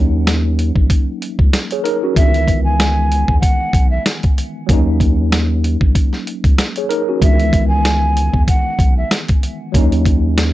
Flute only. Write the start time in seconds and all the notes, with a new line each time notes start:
2.16 E5
2.64 G#5
3.40 F#5
3.90 E5
7.23 E5
7.68 G#5
8.48 F#5
8.97 E5